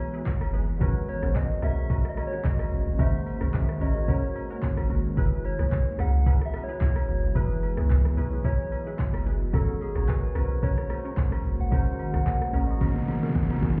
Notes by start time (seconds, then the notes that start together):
Already playing: E3 F#3 G#3 B3 E4 F#4 G#4 B4 C#5 D#5
0.14 E4 G#4 B4, shaker
0.26 kick, clap, shaker
0.41 F#1, cross-stick, high agogo, shaker
0.53 F#1 E4 G#4 B4, shaker
0.68 shaker
0.79 G#1 D#3 G#3 A#3 C#4 F#4 A#4 B4, kick, high agogo, shaker
0.83 C#5
0.96 shaker
1.08 C#5, high agogo, shaker
1.21 A1 G#3 C#4 F#4 A#4 C5, cross-stick, shaker
1.35 D#5, kick, clap, low woodblock, shaker
1.50 shaker
1.61 B1 G#3 C#4 F#4 A#4 E5, cross-stick, high agogo, shaker
1.65 C#5
1.78 shaker
1.90 C#4 F#4 A#4, kick, high agogo, shaker
2.05 cross-stick, shaker
2.09 D#5
2.15 G#3 F#4 A#4, cross-stick, high agogo, shaker
2.19 C#5
2.27 C#5
2.32 C#4 F#4 A#4, shaker
2.44 A1 D#5, kick, clap, shaker
2.59 cross-stick, high agogo, shaker
2.72 G#1, shaker
2.87 G#1, shaker
2.97 G#1 G#3 C#4 F#4 A#4 E5, kick, high agogo, shaker
3.01 C5
3.14 shaker
3.26 high agogo, shaker
3.39 B1 G#3 C#4 F#4 A#4, cross-stick, shaker
3.43 C#5
3.54 kick, clap, low woodblock, shaker
3.69 cross-stick, shaker
3.79 A1 G#3 C#4 F#4 A#4 C#5 D#5, high agogo, shaker
3.94 G#3 F#4 A#4 B4, shaker
4.04 C#4 F#4 C#5, kick, shaker
4.08 A#4 C#5, high agogo
4.23 shaker
4.35 high agogo, shaker
4.50 C#4 F#4 A#4, shaker
4.63 kick, clap, shaker
4.77 G#1, cross-stick, high agogo, shaker
4.90 G#1 C#4 F#4 A#4, shaker
5.05 shaker
5.15 F#1 E3 F#3 B3 E4 G#4 B4, kick, high agogo, shaker
5.19 B4
5.32 shaker
5.44 C#5, high agogo, shaker
5.58 B1 F#3 E4 G#4 B4 C#5, cross-stick, shaker
5.72 kick, clap, low woodblock, shaker
5.87 shaker
5.97 C#2 F#3 E4 G#4 B4 F#5, cross-stick, high agogo, shaker
6.14 shaker
6.26 E4 G#4 B4, kick, high agogo, shaker
6.41 cross-stick, shaker
6.46 E5
6.52 F#3 E4 G#4 B4, cross-stick, high agogo, shaker
6.64 C#5
6.68 E4 G#4 B4, shaker
6.81 B1 C#5, kick, clap, shaker
6.96 cross-stick, high agogo, shaker
7.08 F#1, shaker
7.23 F#1, shaker
7.33 F#1 F#3 E4 G#4 B4 D#5, kick, high agogo, shaker
7.37 B4
7.50 shaker
7.62 high agogo, shaker
7.76 C#2 F#3 E4 G#4 B4 C#5, cross-stick, shaker
7.90 kick, clap, low woodblock, shaker
8.05 cross-stick, shaker
8.15 B1 F#3 E4 G#4 B4 C#5, high agogo, shaker
8.30 F#3 E4 G#4 B4, shaker
8.44 E4 G#4 B4 C#5, kick, high agogo, shaker
8.60 shaker
8.72 high agogo, shaker
8.87 E4 G#4 B4, shaker
8.99 kick, clap, shaker
9.14 F#1, cross-stick, high agogo, shaker
9.26 F#1 E4 G#4 B4, shaker
9.41 shaker
9.52 G#1 D#3 G#3 A#3 C#4 F#4 A4 A#4, kick, high agogo, shaker
9.56 C#5
9.68 shaker
9.81 G#4, high agogo, shaker
9.94 A1 G#3 C#4 F#4 A#4, cross-stick, shaker
9.98 C#5
10.08 B4, kick, clap, low woodblock, shaker
10.23 shaker
10.34 B1 G#3 C#4 F#4 A#4 B4 C5, cross-stick, high agogo, shaker
10.44 C#5
10.50 shaker
10.62 C#4 F#4 A#4 C#5, kick, high agogo, shaker
10.78 cross-stick, shaker
10.88 G#3 F#4 A#4 C5, cross-stick, high agogo, shaker
10.99 C#5
11.05 C#4 F#4 A#4, shaker
11.17 A1, kick, clap, shaker
11.32 cross-stick, high agogo, shaker
11.44 G#1, shaker
11.60 G#1 F#5, shaker
11.70 G#1 G#3 C#4 F#4 A#4 C5, kick, high agogo, shaker
11.87 shaker
11.99 high agogo, shaker
12.12 B1 G#3 C#4 F#4 A#4 C#5, cross-stick, shaker
12.26 kick, clap, low woodblock, shaker
12.41 cross-stick, shaker
12.52 A1 G#3 C#4 F#4 A#4 D#5, high agogo, shaker
12.67 G#3 F#4 A#4 D#5, shaker
12.80 C#4 F#4 A#4, kick, snare, high agogo, shaker
12.89 snare
12.96 snare, shaker
13.02 snare
13.08 snare, high agogo, shaker
13.16 snare
13.23 C#4 F#4 A#4, snare, shaker
13.29 snare
13.35 G#1, kick, snare, low woodblock, shaker
13.43 snare
13.50 snare, high agogo, shaker
13.56 snare
13.62 G#1 C#4 F#4 A#4, snare, shaker
13.70 snare